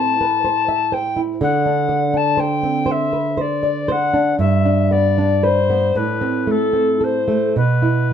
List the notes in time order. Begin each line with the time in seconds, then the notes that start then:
Already playing: A2 C4 C5 A5
0.21 B4
0.44 C5
0.68 E5
0.92 C5 G5
1.16 E4
1.41 D3 F#5
1.66 D4
1.89 D5
2.14 D4 A5
2.37 C5 G5
2.63 C4
2.86 C5
2.91 E5
3.13 B4
3.37 C5 D5
3.63 D5
3.88 C5 F#5
4.14 D4
4.39 G2 E5
4.65 D4
4.91 B3 D5
5.18 D4
5.43 B4 C5
5.70 B3
5.95 A2 B4
6.21 C4
6.47 A3 A4
6.73 C4
7.01 A4 C5
7.28 A3
7.56 B2 B4
7.82 E4